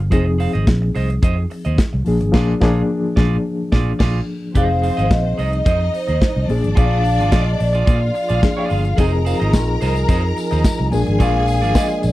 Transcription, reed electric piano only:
0.10 F3 C4 D#4 G#4
2.05 F3 A#3 D4 G#4
2.32 F3 A#3 D4 G#4
2.60 F3 A#3 D4 G#4
4.54 F3 C4 D#4 G#4
6.48 F3 A#3 C#4 G#4
6.56 D4
8.42 F3 A#3 D4 G#4
8.97 F3 C4 D#4 G#4
10.91 F3 A#3 D4 G#4

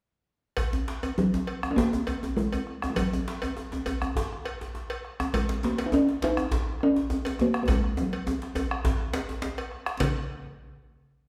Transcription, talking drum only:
1.18 F#3
1.71 C#4
1.76 A#3
2.37 G#3
2.90 G#3
2.96 F#3
5.34 G#3
5.64 A#3
5.86 D#4
5.94 C#4
6.24 D#4
6.83 C#4
7.41 A#3
7.63 A#3
7.71 G#3
8.01 F#3
10.00 C#3

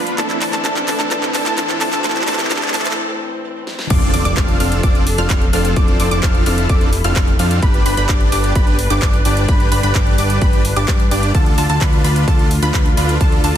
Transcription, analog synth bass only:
3.90 F1
4.14 F1
4.25 F1
4.37 F1
4.60 F1
4.84 F1
5.18 F1
5.30 F1
5.53 F1
5.77 F1
6.00 F1
6.11 F1
6.23 F1
6.46 F1
6.70 F1
7.05 F1
7.16 F1
7.39 F2
7.63 G1
7.86 G1
7.97 G1
8.09 G1
8.32 G1
8.56 G1
8.91 G1
9.02 G1
9.25 G1
9.49 G1
9.72 G1
9.84 G1
9.95 G1
10.18 G1
10.42 G1
10.77 G1
10.88 G2
11.11 G1
11.35 D2
11.58 D2
11.69 D2
11.81 D2
12.04 D2
12.28 D2
12.62 D2
12.74 D2
12.97 D2
13.21 D2
13.44 D2

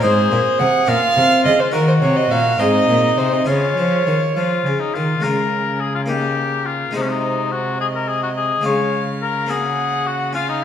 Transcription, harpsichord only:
0.01 G#2 C4 C5
0.32 A#2
0.60 C3
0.86 A#2 C#4 A#4
1.17 C3
1.46 C#3
1.72 D#3 D#4 A#4
2.02 C3
2.32 A#2
2.58 G#2 C4 G#4
2.90 A#2
3.19 C3
3.45 C#3 C#4 G#4
3.78 F3
4.07 D#3
4.37 F3
4.66 C#3
4.96 D#3
5.20 G#3 C#4 F4
5.25 C#3
6.06 A#3 D#4
6.91 G#3 D#4 F#4
6.96 C3
8.61 G#3 F4
8.66 C#3
9.46 A#3 C#4 F#4
10.33 C#4 F4

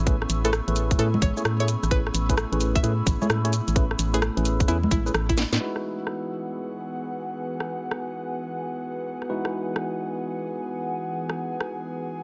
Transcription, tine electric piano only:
0.07 A3 C#4 E4 G#4 B4
0.45 A3 C#4 E4 G#4 B4
0.68 A3 C#4 E4 G#4 B4
0.99 A3 C#4 E4 G#4 B4
1.37 A3 C#4 E4 G#4 C#5
1.60 A3 C#4 E4 G#4 C#5
1.91 A3 C#4 E4 G#4 B4
2.29 A3 C#4 E4 G#4 B4
2.52 A3 C#4 E4 G#4 B4
2.83 A3 C#4 E4 G#4 B4
3.22 A3 C#4 E4 G#4 C#5
3.45 A3 C#4 E4 G#4 C#5
3.76 A3 C#4 E4 G#4 B4
4.14 A3 C#4 E4 G#4 B4
4.37 A3 C#4 E4 G#4 B4
4.68 A3 C#4 E4 G#4 B4
5.06 A3 C#4 E4 G#4 B4
5.60 G#3 D#4 E4 F#4 B4
9.30 G#3 D#4 E4 F#4 B4

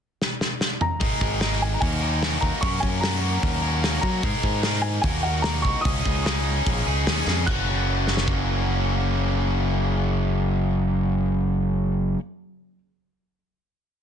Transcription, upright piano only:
0.82 A#5
1.62 G#5
1.74 A#5
1.80 G#5
2.41 A#5
2.61 C#6
2.80 G#5
3.01 A#5
4.01 A#5
4.82 G#5
5.02 G#5
5.23 F#5
5.42 A#5
5.62 C#6
5.81 D#6
7.47 F#6

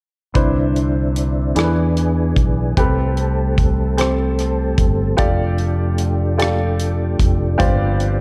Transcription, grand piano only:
0.34 C3 D4 E4 B4 C5
1.55 E3 D4 E4 G#4 A4
1.63 B4
2.77 C3 C4 G4 A4 B4
3.97 C4 G4 A4 C5
5.17 F4 G4 A4 D5
6.37 F4 G4 A4 D5
7.58 G2 F4 G4 C5 D5

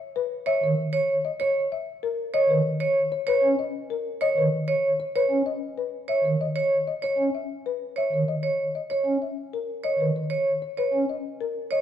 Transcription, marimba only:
0.16 B4
0.47 E5
0.63 C#5
1.25 D#5
1.41 C#5
1.72 E5
2.03 A#4
2.34 D#5
2.50 B4
3.12 C#5
3.28 B4
3.59 D#5
3.90 A#4
4.22 D#5
4.38 B4
5.00 C#5
5.16 B4
5.46 D#5
5.78 B4
6.09 E5
6.25 C#5
6.41 D#5
6.87 D#5
7.04 C#5
7.35 E5
7.66 B4
7.98 E5
8.14 C#5
8.28 D#5
8.75 D#5
8.91 C#5
9.22 E5
9.53 A#4
9.84 D#5
10.00 B4
10.16 C#5
10.62 C#5
10.78 B4
11.09 D#5
11.41 A#4
11.72 D#5

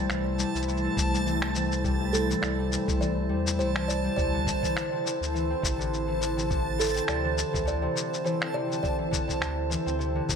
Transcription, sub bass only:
0.10 C2
0.55 C2
0.97 C2
2.42 C2
2.88 C2
3.30 E2
3.59 C2
4.18 D2
5.21 D2
5.63 A1
7.09 D2
7.54 D2
9.41 D2
9.86 D2
10.29 D2

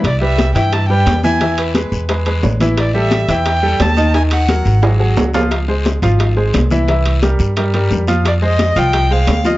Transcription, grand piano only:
0.21 G3 G4 B4
0.55 E3 E4 E5
0.90 G3 G4 B4
1.24 E3 E4 E5
1.41 E3 E4 E5
1.75 G#3 G#4 B4
2.10 G#3 G#4 B4
2.27 G#3 G#4 B4
2.61 E3 E4 E5
2.94 G3 G4 A4
3.29 E3 E4 E5
3.63 G3 G4 A4
3.97 D#3 D#4 D#5
4.14 D#3 D#4 D#5
4.49 F#3 F#4 A#4
4.82 F#3 F#4 G#4
4.99 F#3 F#4 G#4
5.34 F3 F4 F5
5.68 G#3 G#4 C5
6.02 F3 F4 F5
6.37 G#3 G#4 C5
6.71 E3 E4 E5
6.88 E3 E4 E5
7.22 G3 G4 A#4
7.57 G3 G4 A#4
7.74 G3 G4 A#4
8.07 F3 F4 F5
8.42 G#3 G#4 C5
8.76 F3 F4 F5
9.11 G#3 G#4 C5
9.45 F3 F4 F5

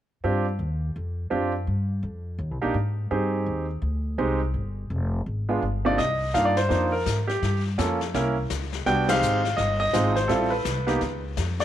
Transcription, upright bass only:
0.24 G2
0.59 D#2
0.96 F2
1.31 F#2
1.67 G2
2.03 F2
2.39 D#2
2.51 C2
2.63 A#1
2.74 G#2
3.11 G2
3.46 D#2
3.82 D2
4.18 C2
4.54 G1
4.90 F1
5.26 G#1
5.62 G1
5.98 C2
6.34 G2
6.70 F2
7.06 G#2
7.42 G2
7.78 F2
8.14 C2
8.50 C#2
8.86 C2
9.21 G#1
9.57 G1
9.93 G#1
10.29 A1
10.65 C2
11.01 C#2
11.37 F2

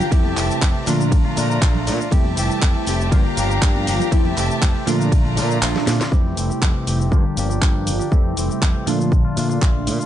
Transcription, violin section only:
Already playing: G4 F5 A#5
0.12 E5 A5
0.87 A3 D5 A#5
2.12 G4 E5 A5
3.12 F5 A#5
4.12 E5 A5
4.87 A3 D5 A#5

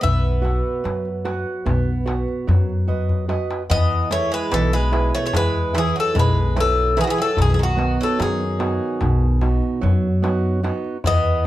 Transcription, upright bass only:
0.03 B1
0.85 F#2
1.66 B1
2.48 F#2
3.70 E2
4.52 B1
5.34 E2
6.15 B1
7.38 B1
8.20 F#2
9.02 B1
9.83 F#2
11.05 E2

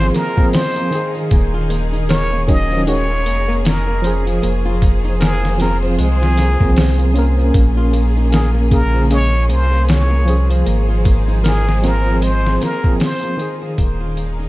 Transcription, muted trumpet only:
Already playing: C5
0.15 A#4
0.54 C5
2.11 C#5
2.50 D#5
2.88 C#5
3.66 A#4
5.23 G#4
5.62 A#4
6.00 G#4
8.35 G#4
8.74 A#4
9.13 C#5
9.52 C5
9.90 C#5
11.46 G#4
11.85 A#4
12.24 C5
12.63 A#4
13.02 C5

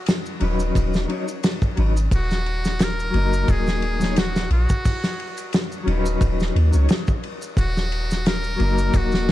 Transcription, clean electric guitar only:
0.40 F#3 C#4 D#4
0.44 B4
1.08 F#3 C#4 D#4 C#5
1.76 F#3 C#4 D#4 B4
3.11 F#3 A#3
3.16 D#4 A#4
3.99 F#3 A#3 D#4 C#5
5.83 F#3 C#4
5.88 D#4 B4
6.72 F#3 C#4 D#4 C#5
8.56 F#3 A#3
8.61 D#4 A#4

